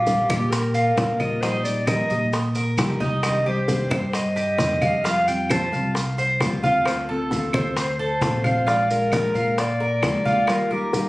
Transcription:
Already playing: A#1 F4 G4
0.07 D3 G3 D4 F4, high bongo, high conga, maracas
0.29 A#2 G3 D4 F4 G4, high conga, claves, maracas
0.50 A#4, muted nylon-string guitar stroke, high bongo, high conga, maracas
0.74 F4, high conga, maracas
0.97 A#2 D3 G3 D4 F4, high bongo, low bongo, high conga, maracas
1.20 G3 D4 F4 D#5, high conga, claves, maracas
1.41 F3 G3 D#4 G4 C5, high bongo, high conga, maracas
1.64 G3 D#4 G4 D5, high conga, maracas
1.87 F3 G3 D#4 G4 A#4 D#5, high bongo, high conga, claves, maracas
2.10 A#2 G3 D#4 G4 D#5, high bongo, high conga, maracas
2.33 muted nylon-string guitar stroke, high bongo, high conga, maracas
2.55 A#4, high bongo, high conga, maracas
2.77 C2 F3 G3 D#4 G4, high bongo, low bongo, high conga, claves, maracas
3.00 G3 D#4 G4, high bongo, high conga, maracas
3.23 C3 D#3 G3 D4 G4 D#5, high bongo, high conga, claves, maracas
3.46 G3 D4 G4 C5, high conga
3.68 C3 D#3 G3 D4 G4, high bongo, high conga, maracas
3.90 G2 D4 G4 C5, high conga, claves, maracas
3.95 G3
4.13 D#5, muted nylon-string guitar stroke, high bongo, high conga, maracas
4.36 G4, high conga, maracas
4.58 F2 C3 D#3 G3 D4 G4, high bongo, low bongo, high conga, maracas
4.82 G3 D4 G4 F5, high conga, claves, maracas
5.04 F3 G3 C4 F4 F5, high bongo, high conga, maracas
5.28 G3 C4 F4 G5, high conga, maracas
5.50 F3 G3 C4 F4 C5 A5, high bongo, high conga, claves, maracas
5.72 C2 C4 F4 F5, high bongo, high conga, maracas
5.76 G3
5.95 muted nylon-string guitar stroke, high bongo, high conga, maracas
6.18 C5, high bongo, high conga, maracas
6.40 D2 F3 G3 C4 F4, high bongo, low bongo, high conga, claves, maracas
6.63 G3 C4 F4, high bongo, high conga, maracas
6.85 D3 A3 C4 F4 C5, high bongo, high conga, claves, maracas
7.08 A3 C4 F4 A4, high conga
7.31 D3 A3 C4 F4, high bongo, high conga, maracas
7.53 D2 A3 C4 F4 C5, high conga, claves, maracas
7.76 C5, muted nylon-string guitar stroke, high bongo, high conga, maracas
7.99 A4, high conga
8.21 A#1 D3 A3 C4 F4, high bongo, low bongo, high conga, maracas
8.44 A3 C4 F4 F5, high conga, claves, maracas
8.67 F3 G#3 D4 F4 D5, high bongo, high conga, maracas
8.89 G#3 D4 F4 A#4, high conga, maracas
9.12 F3 G#3 D4 F4 A#4, high bongo, high conga, claves, maracas
9.34 A#2 G#3 D4 F4 F5, high bongo, high conga, maracas
9.58 D5, muted nylon-string guitar stroke, high bongo, high conga, maracas
9.80 A#4, high bongo, high conga
10.02 D#2 F3 G#3 D4 F4, high bongo, low bongo, high conga, claves, maracas
10.25 G#3 D4 F4, high bongo, high conga, maracas
10.47 D#3 G3 D#4 F4 A#4, high bongo, high conga, claves, maracas
10.71 G3 D#4 F4 G4 A#4, high conga
10.93 D#3 G3 D#4 F4, high bongo, high conga, maracas

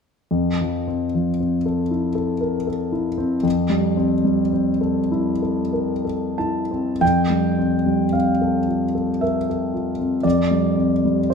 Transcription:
0.31 F2
0.61 F3
0.88 C4
1.15 F3
1.40 C4
1.66 A4
1.91 E4
2.15 A4
2.41 A#4
2.67 A4
2.92 E4
3.18 C4
3.43 F2
3.70 G3
3.97 C4
4.25 G3
4.53 C4
4.81 A4
5.12 E4
5.42 A4
5.73 A#4
6.05 A4
6.38 E4 A5
6.71 C4
7.01 F2 G5
7.30 G3
7.59 C4
7.86 G3
8.13 C4 F5
8.41 A4
8.68 F4
8.95 A4
9.21 A#4 E5
9.50 A4
9.74 F4
9.99 C4
10.23 F2 D5
10.51 G3
10.77 C4
11.05 G3
11.30 C5

